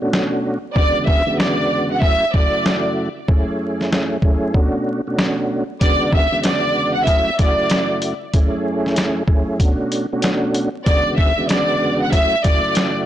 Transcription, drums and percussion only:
0.13 snare
0.76 kick
1.07 kick
1.40 snare
2.02 kick
2.34 kick
2.66 snare
3.28 kick
3.81 snare
3.92 snare
4.22 kick
4.54 kick
5.19 snare
5.81 kick, closed hi-hat
6.13 kick
6.44 snare, closed hi-hat
7.07 kick, closed hi-hat
7.39 kick, closed hi-hat
7.70 snare, closed hi-hat
8.02 closed hi-hat
8.34 kick, closed hi-hat
8.86 snare
8.96 snare, closed hi-hat
9.28 kick
9.60 kick, closed hi-hat
9.92 closed hi-hat
10.22 snare, closed hi-hat
10.54 closed hi-hat
10.86 kick, closed hi-hat
11.18 kick
11.49 snare, closed hi-hat
12.12 kick, closed hi-hat
12.44 kick, closed hi-hat
12.75 snare, closed hi-hat

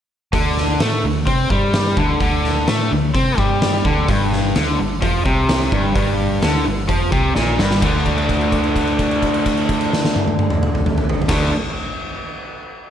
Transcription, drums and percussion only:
0.33 kick, open hi-hat
0.57 snare
0.80 snare, open hi-hat
1.27 kick, open hi-hat
1.50 kick
1.73 snare, open hi-hat
1.97 kick
2.20 kick, open hi-hat
2.44 snare
2.67 snare, open hi-hat
3.15 kick, open hi-hat
3.38 kick
3.62 snare, open hi-hat
3.85 kick
4.09 kick, open hi-hat
4.33 snare
4.55 snare, open hi-hat
5.02 kick, open hi-hat
5.26 kick
5.49 snare, open hi-hat
5.72 kick
5.95 kick, open hi-hat
6.42 snare, open hi-hat
6.88 kick, open hi-hat
7.12 kick
7.36 snare
7.59 snare
7.71 snare
7.82 kick, crash
8.06 kick, crash
8.18 crash
8.29 kick, crash
8.41 crash
8.52 kick, crash
8.64 crash
8.76 kick, crash
8.87 crash
8.99 kick, crash
9.11 crash
9.22 kick, crash
9.34 crash
9.46 kick, crash
9.57 crash
9.69 kick, crash
9.81 crash
9.93 snare
10.05 snare
10.16 high tom
10.28 high tom
10.39 high tom
10.50 mid tom
10.63 mid tom
10.75 mid tom
10.86 mid tom
10.98 mid tom
11.09 floor tom
11.22 floor tom
11.29 kick, snare, crash

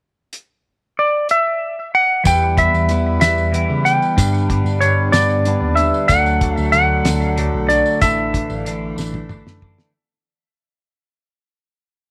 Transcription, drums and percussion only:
0.33 closed hi-hat
1.29 closed hi-hat
2.25 kick, closed hi-hat, tambourine
2.58 kick, closed hi-hat
2.74 tambourine
2.89 closed hi-hat, tambourine
3.21 snare, closed hi-hat, tambourine
3.38 tambourine
3.54 closed hi-hat
3.86 closed hi-hat, tambourine
4.02 tambourine
4.18 kick, closed hi-hat, tambourine
4.34 tambourine
4.50 kick, closed hi-hat
4.66 tambourine
4.82 closed hi-hat, tambourine
5.13 snare, closed hi-hat, tambourine
5.30 tambourine
5.45 closed hi-hat
5.77 closed hi-hat, tambourine
5.94 tambourine
6.08 kick, closed hi-hat, tambourine
6.26 tambourine
6.41 kick, closed hi-hat
6.57 tambourine
6.73 closed hi-hat, tambourine
7.05 snare, closed hi-hat, tambourine
7.22 tambourine
7.38 closed hi-hat
7.70 closed hi-hat, tambourine
7.86 tambourine
8.01 kick, closed hi-hat, tambourine
8.34 kick, closed hi-hat
8.50 tambourine
8.66 closed hi-hat, tambourine
8.98 snare, tambourine
9.14 high tom
9.29 mid tom, tambourine
9.47 snare
9.62 kick
9.78 snare

